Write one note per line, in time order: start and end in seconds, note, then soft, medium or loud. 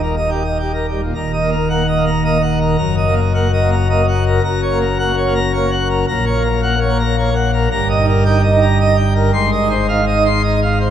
0.00 1.11 D#1 medium
0.00 1.11 D#2 medium
0.00 0.15 A#4 medium
0.17 0.30 D#5 medium
0.30 0.43 G4 medium
0.45 0.58 D#5 medium
0.59 0.72 G4 medium
0.74 0.86 A#4 medium
0.88 1.01 G3 medium
1.02 1.14 A#2 medium
1.15 2.76 D#1 medium
1.15 2.76 D#2 medium
1.15 1.32 A#5 loud
1.33 1.50 D#5 medium
1.42 1.55 A#3 medium
1.52 1.69 A#4 medium
1.70 1.83 A#3 medium
1.70 1.87 F#5 medium
1.88 2.05 D#5 medium
1.97 2.10 A#3 medium
2.06 2.23 A#5 medium
2.25 2.37 A#3 medium
2.25 2.41 D#5 medium
2.42 2.59 F#5 medium
2.61 2.77 A#4 medium
2.78 4.39 F#1 medium
2.78 4.39 F#2 medium
2.78 2.95 A#5 loud
2.97 3.14 D#5 medium
3.07 3.20 A#3 medium
3.16 3.33 A#4 medium
3.34 3.47 A#3 medium
3.34 3.51 F#5 medium
3.53 3.70 D#5 medium
3.62 3.75 A#3 medium
3.71 3.88 A#5 medium
3.90 4.02 A#3 medium
3.90 4.06 D#5 medium
4.08 4.24 F#5 medium
4.27 4.42 A#4 medium
4.44 6.04 F#1 medium
4.44 6.04 F#2 loud
4.44 4.61 A#5 loud
4.62 4.79 C#5 medium
4.71 4.84 A#3 medium
4.81 4.98 A#4 medium
4.99 5.12 A#3 medium
4.99 5.16 F#5 medium
5.17 5.33 C#5 medium
5.26 5.39 A#3 medium
5.35 5.52 A#5 medium
5.53 5.66 A#3 medium
5.53 5.70 C#5 loud
5.71 5.88 F#5 medium
5.90 6.06 A#4 medium
6.08 7.68 A#1 loud
6.08 7.68 A#2 loud
6.08 6.25 A#5 loud
6.26 6.43 C#5 medium
6.35 6.48 A#3 medium
6.44 6.61 A#4 medium
6.62 6.75 A#3 medium
6.62 6.79 F#5 medium
6.80 6.97 C#5 loud
6.90 7.02 A#3 medium
7.00 7.16 A#5 medium
7.17 7.30 A#3 medium
7.17 7.34 C#5 medium
7.35 7.51 F#5 medium
7.53 7.69 A#4 medium
7.71 9.30 G1 loud
7.71 9.30 G2 loud
7.71 7.88 A#5 loud
7.89 8.06 D#5 medium
7.99 8.11 D#4 medium
8.07 8.24 A#4 medium
8.25 8.38 D#4 medium
8.25 8.42 G5 loud
8.43 8.60 D#5 loud
8.52 8.65 D#4 medium
8.61 8.78 A#5 medium
8.80 8.92 D#4 medium
8.80 8.96 D#5 medium
8.96 9.13 G5 medium
9.15 9.31 A#4 medium
9.33 10.90 G#1 loud
9.33 10.90 G#2 loud
9.33 9.50 C6 loud
9.52 9.68 D#5 medium
9.61 9.73 D#4 medium
9.70 9.87 C5 medium
9.88 10.01 D#4 medium
9.88 10.05 F5 medium
10.07 10.23 D#5 medium
10.16 10.28 D#4 medium
10.25 10.42 C6 medium
10.44 10.56 D#4 medium
10.44 10.60 D#5 medium
10.62 10.79 F5 medium
10.80 10.90 C5 medium